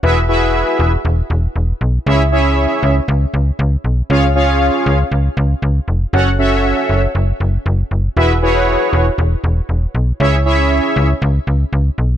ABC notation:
X:1
M:4/4
L:1/16
Q:1/4=118
K:C#m
V:1 name="Analog polysynth"
[EFGBe]2 [EFGBe]4- [EFGBe] z8 z | [CEGce]2 [CEGce]4- [CEGce] z8 z | [C^EGc^e]2 [CEGce]4- [CEGce] z8 z | [CFAcf]2 [CFAce]4- [CFAce] z8 z |
[EFGBe]2 [EFGBc]4- [EFGBc] z8 z | [CEGce]2 [CEGce]4- [CEGce] z8 z |]
V:2 name="FM bass" clef=bass
E,,,4- E,,, z E,,,2 E,,,2 E,,,2 E,,,2 B,,,2 | C,,4- C,, z C,,2 C,,2 C,,2 C,,2 B,,,2 | C,,4- C,, z C,,2 C,,2 C,,2 C,,2 ^E,,,2 | F,,,4- F,,, z F,,,2 F,,,2 F,,,2 F,,,2 F,,,2 |
E,,,4- E,,, z E,,,2 E,,,2 E,,,2 E,,,2 B,,,2 | C,,4- C,, z C,,2 C,,2 C,,2 C,,2 B,,,2 |]